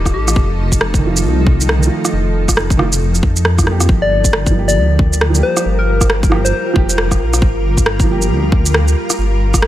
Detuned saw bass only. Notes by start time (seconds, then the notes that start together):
Already playing: D#1
0.14 A1
0.36 F1
1.25 C2
2.13 F1
3.01 F1
3.23 F2
3.89 G1
4.77 D2
5.66 G1
6.76 F1
7.20 A#1
7.42 G1
8.30 D2
9.18 G1